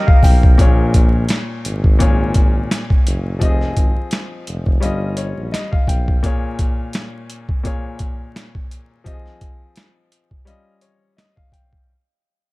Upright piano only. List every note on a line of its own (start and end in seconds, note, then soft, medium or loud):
0.00 0.41 G3 medium
0.00 0.42 C#4 medium
0.00 0.42 F4 medium
0.00 0.60 C#5 medium
0.00 0.61 D#5 loud
0.07 0.22 F5 medium
0.23 0.56 G5 medium
0.58 1.83 A#2 medium
0.58 1.84 A#3 medium
0.58 1.84 G#4 medium
0.58 1.85 C#5 loud
1.99 3.24 A#2 medium
1.99 3.25 A#3 medium
1.99 3.25 G#4 medium
1.99 3.26 C#5 medium
3.39 4.65 F3 medium
3.39 4.65 C4 medium
3.39 3.48 G4 medium
3.39 4.66 D#5 loud
3.48 4.69 G#4 medium
4.80 6.06 G3 medium
4.80 6.07 C#4 medium
4.80 6.07 F4 medium
4.80 5.51 D#5 medium
5.17 5.50 C#5 medium
5.52 5.70 D#5 medium
5.72 5.87 F5 medium
5.88 6.21 G5 medium
6.23 7.48 A#2 medium
6.23 7.48 A#3 medium
6.23 7.49 G#4 medium
6.23 7.49 C#5 loud
7.64 8.89 A#2 medium
7.64 8.89 A#3 medium
7.64 8.90 G#4 medium
7.64 8.90 C#5 medium
9.04 10.30 F3 medium
9.04 10.30 C4 medium
9.04 9.13 G4 medium
9.04 10.31 D#5 medium
9.13 10.34 G#4 medium
10.45 11.71 G3 medium
10.45 11.71 C#4 medium
10.45 11.72 F4 medium
10.45 11.15 D#5 medium
10.82 11.15 C#5 medium
11.17 11.35 D#5 medium
11.36 11.51 F5 medium
11.53 11.86 G5 medium